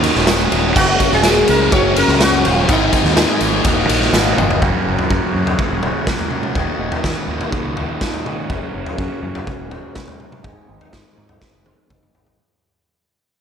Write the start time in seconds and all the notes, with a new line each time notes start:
Already playing: C#4 D#4 F#4
0.03 D#2 A#2 D#3, ride
0.16 D#1, snare
0.27 D#2 A#2 D#3, snare, ride, tambourine
0.51 D#1 A#2 D#3, ride, tambourine
0.75 F#1 F#2 C#3 F#3 A#3 C#4 F#4, kick, crash, tambourine
0.99 C#3 F#3, kick, ride, tambourine
1.12 D#1 G#4, snare
1.23 F#2 C#3 F#3, snare, ride, tambourine
1.48 C#2 C#3 F#3 A#4, ride, tambourine
1.72 F#1 F#2 C#3 F#3 C#5, kick, ride, tambourine
1.96 F#2 C#3 F#3 A#4, ride, tambourine
2.08 C#2, snare
2.20 F#2 C#3 F#3 F#4, snare, ride, tambourine
2.44 D#1 C#3 F#3 F4, ride, tambourine
2.68 G#1 G#2 D#3 G#3 C4 D#4 G#4, kick, ride, tambourine
2.92 D#3 G#3, kick, ride, tambourine
3.04 D#2, snare
3.16 G#2 D#3 G#3, snare, ride, tambourine
3.40 G#1 D#3 G#3, ride, tambourine
3.64 D#1 D#2 A#2 D#3 A#3 D#4 F#4, kick, ride, tambourine
3.88 A#1 D#2 A#2 D#3, ride, tambourine
4.02 snare
4.11 G#1 D#2 A#2 D#3, snare, tambourine
4.36 F#1 A#2 D#3, mid tom, tambourine
4.51 floor tom
4.61 F#1 F#2 C#3 F#3 A#3 C#4 F#4, kick, floor tom
4.86 F#1 C#3 F#3
4.99 floor tom
5.10 F#2 C#3 F#3, kick
5.34 F#2 C#3 F#3
5.47 floor tom
5.58 F#2 C#3 F#3, kick, mid tom
5.70 D#1
5.83 F#2 C#3 F#3, floor tom
6.06 F#2 C#3 F#3, kick, snare, mid tom
6.19 floor tom
6.30 C#3 F#3, mid tom
6.43 mid tom
6.55 D#1 D#2 A#2 D#3 D#4, kick, floor tom
6.79 D#1 A#2 D#3
6.92 floor tom
7.03 D#2 A#2 D#3, kick, snare
7.28 D#2 A#2 D#3
7.41 floor tom
7.51 D#2 A#2 D#3, kick, mid tom
7.64 C#2
7.76 D#2 A#2 D#3, floor tom
8.01 D#2 A#2 D#3, kick, snare
8.14 floor tom
8.25 A#2 D#3, mid tom
8.49 F#1 F#2 C#3 F#3 A#3, kick, floor tom
8.74 F#1 C#3 F#3
8.86 floor tom
8.98 F#2 C#3 F#3, kick
9.22 F#2 C#3 F#3
9.35 floor tom
9.47 F#2 C#3 F#3, kick, mid tom
9.59 D#1
9.71 F#2 C#3 F#3, floor tom
9.95 F#2 C#3 F#3, kick, snare, mid tom
10.08 floor tom
10.20 C#3 F#3, mid tom
10.32 mid tom
10.43 G#1 G#2 D#3 G#3 C4 D#4 G#4, kick, floor tom
10.69 G#1 D#3 G#3
10.81 floor tom
10.93 G#2 D#3 G#3, kick, snare
11.17 G#2 D#3 G#3
11.29 floor tom
11.40 G#2 D#3 G#3, kick, snare
11.53 F1
11.65 G#2 D#3 G#3, high tom
11.90 F#1 G#2 D#3 G#3, kick, mid tom
12.03 mid tom
12.14 G#1 D#3 G#3, floor tom
12.26 floor tom